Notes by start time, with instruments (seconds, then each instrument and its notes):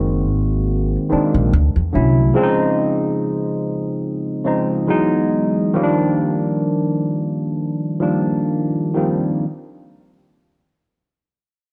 Already playing: upright bass F#1, tine electric piano D#3 G#3 A#3 C4 F#4 C5
0.29 upright bass G#1
1.10 tine electric piano D#3 G#3 A#3 C4 D4, muted upright bass stroke
1.34 upright bass A#1
1.53 upright bass D2
1.76 upright bass E2
1.92 upright bass C2, tine electric piano D3 F#3 A3 C#4 E4
2.34 tine electric piano C#3 F3 G#3 C4 D4
2.43 tine electric piano D#4
4.44 tine electric piano C#3 F3 G#3 C4 D#4
4.87 tine electric piano E3 F#3 G#3 B3 D#4
5.74 tine electric piano D#3 F3 G3 A#3 C#4
5.83 tine electric piano D4
8.00 tine electric piano D#3 F3 G3 A#3 D4
8.94 tine electric piano D#3 F3 G3 A#3 C4